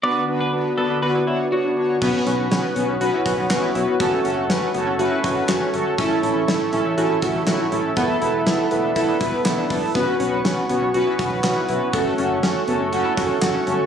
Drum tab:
CC |--------|x-------|--------|--------|
HH |--------|-xxxxxxx|xxxxxxxx|xxxxxxxx|
CP |--------|------x-|------x-|------x-|
SD |--------|--o---o-|--o---o-|--o---o-|
BD |--------|o----o--|o----o--|o----o--|

CC |--------|--------|--------|
HH |xxxxxxxo|xxxxxxxx|xxxxxxxx|
CP |------x-|------x-|------x-|
SD |--o---o-|--o---o-|--o---o-|
BD |o---oo-o|o----o--|o----o--|